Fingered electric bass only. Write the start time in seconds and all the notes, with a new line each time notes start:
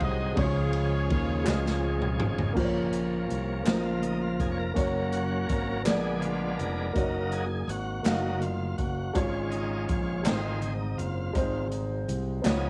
0.01 C2
0.37 C#2
1.11 D#2
1.46 C#2
2.20 G#1
2.56 A#1
3.30 C2
3.66 A#1
4.39 F1
4.77 F#1
5.50 G#1
5.86 A#1
6.59 F1
6.96 F#1
7.67 G#1
8.05 F#1
8.78 F#1
9.15 G#1
9.89 A#1
10.25 G#1
10.99 F#1
11.35 G#1
12.08 C2
12.45 C#2